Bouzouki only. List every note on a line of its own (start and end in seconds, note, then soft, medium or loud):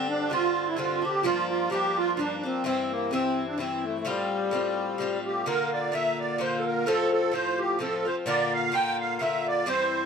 0.00 0.29 G2 medium
0.00 0.31 D3 medium
0.00 0.31 C4 medium
0.00 0.33 D4 medium
0.30 0.75 G2 medium
0.30 0.76 D3 medium
0.30 0.77 C4 medium
0.30 0.78 D4 medium
0.76 1.03 G2 medium
0.76 1.03 D3 medium
0.76 1.03 C4 medium
0.76 1.00 D4 medium
1.02 1.24 D3 soft
1.02 1.25 C4 soft
1.02 1.24 D4 soft
1.23 1.69 G2 medium
1.23 1.69 F3 medium
1.23 1.71 A#3 medium
1.23 1.72 D4 medium
1.70 2.16 G2 medium
1.70 2.18 F3 medium
1.70 2.18 A#3 medium
1.70 2.19 D4 medium
2.17 2.43 G2 medium
2.17 2.44 F3 medium
2.17 2.44 A#3 medium
2.17 2.42 D4 medium
2.43 2.64 F3 soft
2.43 2.65 A#3 soft
2.43 2.65 D4 soft
2.64 3.10 G2 medium
2.64 3.11 E3 medium
2.64 3.13 C4 medium
2.64 3.12 E4 medium
3.11 3.56 G2 medium
3.11 3.58 E3 medium
3.11 3.59 C4 medium
3.11 3.59 E4 medium
3.58 4.04 G2 medium
3.58 4.05 E3 medium
3.58 4.05 C4 medium
3.58 4.06 E4 medium
4.05 4.50 A2 medium
4.05 4.51 G3 medium
4.05 4.53 C4 medium
4.05 4.54 F4 medium
4.51 4.97 A2 medium
4.51 4.98 G3 medium
4.51 4.99 C4 medium
4.51 5.01 F4 medium
4.98 5.45 A2 medium
4.98 5.46 G3 medium
4.98 5.46 C4 medium
4.98 5.47 F4 medium
5.46 5.91 A#2 medium
5.46 5.92 D3 medium
5.46 5.93 A#3 medium
5.46 5.95 F4 medium
5.92 6.37 A#2 medium
5.92 6.38 D3 medium
5.92 6.39 A#3 medium
5.92 6.41 F4 medium
6.38 6.86 A#2 medium
6.38 6.86 D3 medium
6.38 6.87 A#3 medium
6.38 6.88 F4 medium
6.86 7.30 A2 medium
6.86 7.33 F3 medium
6.86 7.32 C4 medium
6.86 7.35 F4 medium
7.32 7.78 A2 medium
7.32 7.79 F3 medium
7.32 7.80 C4 medium
7.32 7.81 F4 medium
7.79 8.05 A2 medium
7.79 8.05 F3 medium
7.79 8.05 C4 medium
7.79 8.04 F4 medium
8.05 8.26 F3 soft
8.05 8.27 C4 soft
8.05 8.26 F4 soft
8.26 8.71 A#2 medium
8.26 8.71 D3 medium
8.26 8.72 A#3 medium
8.26 8.74 F4 medium
8.72 9.18 A#2 medium
8.72 9.19 D3 medium
8.72 9.20 A#3 medium
8.72 9.21 F4 medium
9.19 9.66 A#2 medium
9.19 9.66 D3 medium
9.19 9.67 A#3 medium
9.19 9.68 F4 medium
9.66 10.06 G2 medium
9.66 10.06 E3 medium
9.66 10.06 C4 medium
9.66 10.06 E4 medium